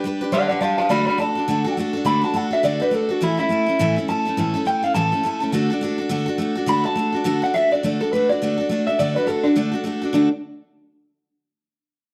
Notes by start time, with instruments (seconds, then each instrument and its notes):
0.04 steel-string acoustic guitar G3 D4 G4 B4
0.21 steel-string acoustic guitar D4 G4 B4
0.32 steel-string acoustic guitar G3 D4 G4 B4, clean electric guitar D5 F#5
0.48 steel-string acoustic guitar D4 G4 B4, clean electric guitar D5 F#5
0.61 steel-string acoustic guitar G3 D4 G4 B4, clean electric guitar F5 A5
0.78 steel-string acoustic guitar D4 G4 B4, clean electric guitar F5 A5
0.89 steel-string acoustic guitar D3 A3 D4 F#4 A4, clean electric guitar D5 B5
1.07 steel-string acoustic guitar D4 F#4 A4, clean electric guitar D5 B5
1.18 steel-string acoustic guitar A3 D4 F#4 A4, clean electric guitar A5
1.35 steel-string acoustic guitar D4 F#4 A4
1.48 steel-string acoustic guitar D3 A3 D4 F#4 A4
1.64 steel-string acoustic guitar D4 F#4 A4
1.77 steel-string acoustic guitar A3 D4 F#4 A4
1.93 steel-string acoustic guitar D4 F#4 A4
2.05 steel-string acoustic guitar D3 A3 D4 F#4 A4, clean electric guitar B5
2.22 steel-string acoustic guitar D4 F#4 A4, clean electric guitar A5
2.34 steel-string acoustic guitar A3 D4 F#4 A4, clean electric guitar F#5
2.51 steel-string acoustic guitar D4 F#4 A4, clean electric guitar E5
2.63 steel-string acoustic guitar D3 A3 D4 F#4 A4, clean electric guitar D5
2.80 steel-string acoustic guitar D4 F#4 A4, clean electric guitar B4
2.91 steel-string acoustic guitar A3 D4 F#4 A4, clean electric guitar A4
3.09 steel-string acoustic guitar D4 F#4 A4, clean electric guitar F#4
3.21 steel-string acoustic guitar A2 E3 A3 C#4 E4 A4, clean electric guitar E4
3.37 steel-string acoustic guitar A3 C#4 E4 A4, clean electric guitar E4
3.49 steel-string acoustic guitar A3 C#4 E4 A4
3.66 steel-string acoustic guitar A3 C#4 E4 A4
3.79 steel-string acoustic guitar A2 E3 A3 C#4 E4 A4
3.96 steel-string acoustic guitar A3 C#4 E4 A4
4.08 steel-string acoustic guitar A3 C#4 E4 A4, clean electric guitar A5
4.25 steel-string acoustic guitar A3 C#4 E4 A4
4.37 steel-string acoustic guitar A2 E3 A3 C#4 E4 A4
4.54 steel-string acoustic guitar A3 C#4 E4 A4
4.65 steel-string acoustic guitar A3 C#4 E4 A4, clean electric guitar G5
4.83 steel-string acoustic guitar A3 C#4 E4 A4, clean electric guitar F5
4.94 steel-string acoustic guitar A2 E3 A3 C#4 E4 A4, clean electric guitar A5
5.12 steel-string acoustic guitar A3 C#4 E4 A4
5.23 steel-string acoustic guitar A3 C#4 E4 A4
5.40 steel-string acoustic guitar A3 C#4 E4 A4
5.52 steel-string acoustic guitar D3 A3 D4 F#4 A4
5.70 steel-string acoustic guitar D4 F#4 A4
5.81 steel-string acoustic guitar A3 D4 F#4 A4
5.98 steel-string acoustic guitar D4 F#4 A4
6.09 steel-string acoustic guitar D3 A3 D4 F#4 A4
6.26 steel-string acoustic guitar D4 F#4 A4
6.38 steel-string acoustic guitar A3 D4 F#4 A4
6.55 steel-string acoustic guitar D4 F#4 A4
6.66 steel-string acoustic guitar D3 A3 D4 F#4 A4, clean electric guitar B5
6.84 steel-string acoustic guitar D4 F#4 A4, clean electric guitar A5
6.95 steel-string acoustic guitar A3 D4 F#4 A4
7.12 steel-string acoustic guitar D4 F#4 A4
7.24 steel-string acoustic guitar D3 A3 D4 F#4 A4
7.42 steel-string acoustic guitar D4 F#4 A4, clean electric guitar F#5
7.54 steel-string acoustic guitar A3 D4 F#4 A4, clean electric guitar E5
7.71 steel-string acoustic guitar D4 F#4 A4, clean electric guitar D5
7.83 steel-string acoustic guitar D3 A3 D4 F#4 A4
8.00 steel-string acoustic guitar D4 F#4 A4, clean electric guitar A4
8.13 steel-string acoustic guitar A3 D4 F#4 A4, clean electric guitar B4
8.29 steel-string acoustic guitar D4 F#4 A4, clean electric guitar D5
8.42 steel-string acoustic guitar D3 A3 D4 F#4 A4
8.58 steel-string acoustic guitar D4 F#4 A4
8.69 steel-string acoustic guitar A3 D4 F#4 A4
8.87 steel-string acoustic guitar D4 F#4 A4, clean electric guitar E5
8.99 steel-string acoustic guitar D3 A3 D4 F#4 A4, clean electric guitar D5
9.16 steel-string acoustic guitar D4 F#4 A4, clean electric guitar B4
9.27 steel-string acoustic guitar A3 D4 F#4 A4, clean electric guitar A4
9.44 clean electric guitar D4, steel-string acoustic guitar D4 F#4 A4
9.56 steel-string acoustic guitar D3 A3 D4 F#4 A4
9.71 steel-string acoustic guitar D4 F#4 A4
9.84 steel-string acoustic guitar A3 D4 F#4 A4
10.02 steel-string acoustic guitar D4 F#4 A4
10.13 steel-string acoustic guitar D3 A3 D4 F#4 A4, clean electric guitar D4